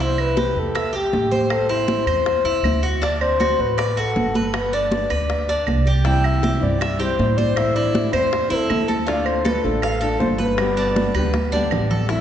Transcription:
Already playing: upright bass C2
0.00 cuban tres E4, soft synth lead C5, high conga
0.18 soft synth lead B4, high conga, claves
0.37 cuban tres G4, high bongo, high conga
0.56 upright bass E2, soft synth lead A4, high bongo, high conga
0.75 cuban tres E5, high bongo, high conga, claves
0.93 cuban tres G4, soft synth lead G4, high bongo, high conga
1.12 upright bass A1, high bongo, low bongo, high conga
1.31 cuban tres C5, high bongo, high conga
1.50 soft synth lead A4, high bongo, high conga, claves
1.69 cuban tres E4, soft synth lead C5, high conga
1.88 high bongo, high conga
2.06 upright bass E2, cuban tres C5, high bongo, high conga, claves
2.26 high bongo, high conga
2.44 upright bass E2, cuban tres E4, high bongo, high conga
2.63 upright bass D2, high bongo, low bongo, high conga, claves
2.83 cuban tres F#4, high bongo
3.02 cuban tres D4, soft synth lead D5, high bongo, high conga
3.21 soft synth lead C5, high conga, claves
3.40 cuban tres F#4, high bongo, high conga
3.59 upright bass A1, soft synth lead B4, high bongo, high conga
3.78 cuban tres D5, high bongo, high conga, claves
3.97 cuban tres F#4, soft synth lead A4, high bongo, high conga
4.16 upright bass G1, high bongo, low bongo, high conga
4.35 cuban tres B4, high bongo, high conga
4.54 soft synth lead B4, high bongo, high conga, claves
4.73 cuban tres D4, soft synth lead D5, high conga
4.91 high bongo, high conga
5.10 upright bass D2, cuban tres B4, high bongo, high conga, claves
5.30 high bongo, high conga
5.49 cuban tres D4, high bongo, high conga
5.67 upright bass C2, high bongo, low bongo, high conga, claves
5.85 cuban tres G4, high bongo
6.04 nylon-string guitar C3 E3 G3 C4 E4, cuban tres E4, soft synth lead G5, high bongo, high conga
6.24 soft synth lead E5, high conga, claves
6.42 nylon-string guitar E3 G3 C4 E4, cuban tres G4, high bongo, high conga
6.60 upright bass G2, nylon-string guitar E3 G3 C4 E4, soft synth lead D5, high bongo, high conga
6.79 cuban tres E5, muted nylon-string guitar stroke, high bongo, high conga, claves
6.99 nylon-string guitar E3 G3 C4 E4, cuban tres G4, soft synth lead C5, high bongo, high conga
7.18 upright bass A2, nylon-string guitar E3 G3 C4 E4, high bongo, low bongo, high conga
7.37 cuban tres C5, soft synth lead D5, high bongo, high conga
7.56 nylon-string guitar E3 A3 C4 E4, soft synth lead E5, high bongo, high conga, claves
7.75 cuban tres E4, soft synth lead D5, high conga
7.94 nylon-string guitar E3 A3 C4 E4, high bongo, high conga
8.12 upright bass E2, nylon-string guitar A3 C4 E4, cuban tres C5, soft synth lead C5, high bongo, high conga, claves
8.31 muted nylon-string guitar stroke, high bongo, high conga
8.49 upright bass E2, nylon-string guitar A3 C4 E4, cuban tres E4, soft synth lead A4, high bongo, high conga
8.69 upright bass D2, nylon-string guitar E3 A3 C4 E4, high bongo, low bongo, high conga, claves
8.88 cuban tres A4, high bongo, high conga
9.06 nylon-string guitar D3 A3 D4 F4, cuban tres F4, soft synth lead D5, high bongo, high conga
9.25 soft synth lead C5, high conga, claves
9.45 nylon-string guitar D3 A3 D4 F4, cuban tres A4, soft synth lead B4, high bongo, high conga
9.64 upright bass A1, nylon-string guitar A3 D4 F4, soft synth lead A4, high bongo, high conga
9.82 cuban tres F5, muted nylon-string guitar stroke, high bongo, high conga, claves
10.00 nylon-string guitar A3 D4 F4, soft synth lead A4, cuban tres A4, high bongo, high conga
10.20 upright bass G1, nylon-string guitar D3 A3 D4 F4, soft synth lead C5, high bongo, low bongo, high conga
10.38 cuban tres B4, soft synth lead B4, high bongo, high conga
10.58 nylon-string guitar B2 D3 G3 B3 G4, high bongo, high conga, claves
10.77 cuban tres D4, high conga
10.96 nylon-string guitar D3 G3 B3 G4, high bongo, high conga
11.14 upright bass D2, nylon-string guitar G3 B3 G4, cuban tres B4, high bongo, high conga, claves
11.18 nylon-string guitar D3
11.34 muted nylon-string guitar stroke, high bongo, high conga
11.52 nylon-string guitar D3 G3 B3 G4, cuban tres D4, high bongo, high conga
11.71 upright bass A1, nylon-string guitar D3 G3 B3 G4, high bongo, low bongo, low conga, claves
11.90 cuban tres A4, high bongo, low conga
12.09 nylon-string guitar E3 A3 C4 E4, cuban tres E4, soft synth lead E5, high bongo, high conga

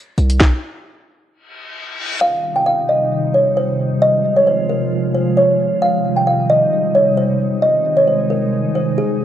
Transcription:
0.18 808-style bass C2, closed hi-hat
0.30 closed hi-hat
0.41 kick, snare
1.31 reverse cymbal
2.21 ambient pad C3 D#3 G3 D#4, kalimba F5
2.56 kalimba G5
2.66 kalimba F5
2.89 kalimba D#5
3.34 kalimba C#5
3.56 kalimba C5
4.01 ambient pad C3 F3 G#3 F4, kalimba D#5
4.36 kalimba C#5
4.47 kalimba C5
4.69 kalimba A#4
5.14 kalimba C5
5.37 kalimba C#5
5.82 ambient pad C3 D#3 G3 D#4, kalimba F5
6.16 kalimba G5
6.27 kalimba F5
6.50 kalimba D#5
6.95 kalimba C#5
7.17 kalimba C5
7.62 ambient pad D#3 G#3 D#4, kalimba D#5
7.97 kalimba C#5
8.08 kalimba C5
8.30 kalimba A#4
8.75 kalimba C5
8.98 kalimba G#4

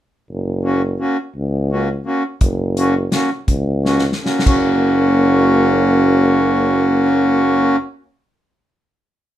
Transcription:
0.30 tuba F#1
0.63 accordion A#3 C#4 F#4
0.99 accordion A#3 C#4 F#4
1.36 tuba C#2
1.71 accordion A#3 C#4 F#4
2.05 accordion A#3 C#4 F#4
2.41 tuba F#1, kick, closed hi-hat
2.77 accordion A#3 C#4 F#4, closed hi-hat
3.12 accordion A#3 C#4 F#4, snare, closed hi-hat
3.48 tuba C#2, kick, closed hi-hat
3.85 accordion A#3 C#4 F#4, snare
3.99 snare
4.12 snare
4.24 accordion A#3 C#4 F#4, snare
4.39 snare
4.46 tuba F#1, accordion A#3 C#4 F#4, kick, crash

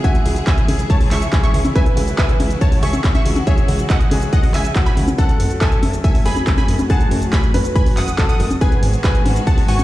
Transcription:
Already playing: string section C#3 E3 G#3 E4 G#4
0.04 grand piano F#4, synth pluck E5 G#5, kick, closed hi-hat, shaker
0.15 closed hi-hat, shaker
0.26 analog synth bass C#2, open hi-hat
0.36 closed hi-hat, shaker
0.47 synth pluck E5 G#5, kick, clap, closed hi-hat, shaker
0.58 closed hi-hat, shaker
0.68 analog synth bass C#2, grand piano G#4, open hi-hat, high conga
0.79 closed hi-hat, shaker
0.90 synth pluck C#5 A5, kick, closed hi-hat, shaker
1.01 open hi-hat, shaker
1.11 analog synth bass C#2, synth pluck E5 C#6, clap, open hi-hat
1.22 closed hi-hat, shaker
1.33 grand piano G#4, kick, clap, closed hi-hat, shaker
1.43 synth pluck E5 C#6, closed hi-hat, shaker
1.54 analog synth bass C#2, open hi-hat
1.65 closed hi-hat, high conga, shaker
1.76 string section F#4, grand piano B4, synth pluck E5 G#5, kick, closed hi-hat, shaker
1.86 closed hi-hat, shaker
1.97 analog synth bass C#2, open hi-hat
2.08 closed hi-hat, shaker
2.18 grand piano B4, synth pluck E5 G#5, kick, clap, closed hi-hat, shaker
2.29 closed hi-hat, shaker
2.40 analog synth bass C#2, open hi-hat, high conga
2.51 closed hi-hat, shaker
2.61 synth pluck C#5 A5, kick, closed hi-hat, shaker
2.72 open hi-hat, shaker
2.83 analog synth bass C#2, grand piano G#4, synth pluck E5 C#6, open hi-hat
2.93 closed hi-hat, high conga, shaker
3.04 kick, clap, closed hi-hat, shaker
3.15 synth pluck E5 C#6, closed hi-hat, high conga, shaker
3.25 analog synth bass C#2, open hi-hat
3.36 closed hi-hat, high conga, shaker
3.47 grand piano G#4, synth pluck C#5 E5, kick, closed hi-hat, shaker
3.58 closed hi-hat, shaker
3.68 analog synth bass C#2, open hi-hat
3.79 closed hi-hat, shaker
3.90 synth pluck D#5 F#5, kick, clap, closed hi-hat, shaker
4.01 closed hi-hat, shaker
4.11 analog synth bass C#2, grand piano G#4, open hi-hat, high conga
4.22 closed hi-hat, shaker
4.33 synth pluck D#5 F#5, kick, closed hi-hat, shaker
4.43 open hi-hat, shaker
4.54 analog synth bass C#2, synth pluck E5 G#5, clap, open hi-hat
4.65 closed hi-hat, shaker
4.76 grand piano F#4, kick, clap, closed hi-hat, shaker
4.86 synth pluck G#5 B5, closed hi-hat, shaker
4.97 analog synth bass C#2, open hi-hat
5.08 high conga, shaker
5.18 string section F#3 A3 F#4, grand piano A4, synth pluck A4 F#5, kick, closed hi-hat, shaker
5.29 closed hi-hat, shaker
5.40 analog synth bass F#1, open hi-hat
5.51 closed hi-hat, shaker
5.61 grand piano A4, synth pluck E5 G#5, kick, clap, closed hi-hat, shaker
5.72 closed hi-hat, shaker
5.83 analog synth bass F#1, open hi-hat, high conga
5.93 closed hi-hat, shaker
6.04 synth pluck E5 G#5, kick, closed hi-hat, shaker
6.15 open hi-hat, shaker
6.26 analog synth bass F#1, grand piano G#4, synth pluck G#5 B5, open hi-hat
6.36 closed hi-hat, high conga, shaker
6.47 kick, clap, closed hi-hat, shaker
6.58 synth pluck G#5 B5, closed hi-hat, high conga, shaker
6.68 analog synth bass F#1, open hi-hat
6.79 closed hi-hat, high conga, shaker
6.90 grand piano G#4, synth pluck F#5 A5, kick, closed hi-hat, shaker
7.01 closed hi-hat, shaker
7.11 analog synth bass F#1, open hi-hat
7.22 closed hi-hat, shaker
7.33 synth pluck G#5 B5, kick, clap, closed hi-hat, shaker
7.43 closed hi-hat, shaker
7.54 analog synth bass F#1, grand piano B4, open hi-hat, high conga
7.65 closed hi-hat, shaker
7.76 synth pluck G#5 B5, kick, closed hi-hat, shaker
7.86 open hi-hat, shaker
7.97 analog synth bass F#1, synth pluck F#5 D#6, clap, open hi-hat
8.08 closed hi-hat, shaker
8.18 grand piano A4, kick, clap, closed hi-hat, shaker
8.29 synth pluck F#5 D#6, closed hi-hat, shaker
8.40 analog synth bass F#1, open hi-hat
8.51 closed hi-hat, high conga, shaker
8.61 string section D#3 G#3 B3 F#4, grand piano G#4, synth pluck B4 G#5, kick, closed hi-hat, shaker
8.72 closed hi-hat, shaker
8.83 analog synth bass G#1, open hi-hat
8.93 closed hi-hat, shaker
9.04 grand piano G#4, synth pluck B4 G#5, kick, clap, closed hi-hat, shaker
9.15 closed hi-hat, shaker
9.26 analog synth bass G#1, open hi-hat, high conga
9.36 closed hi-hat, shaker
9.47 synth pluck F#5 A5, kick, closed hi-hat, shaker
9.58 open hi-hat, shaker
9.68 analog synth bass G#1, grand piano F#4, synth pluck G#5 C#6, open hi-hat
9.79 closed hi-hat, high conga, shaker

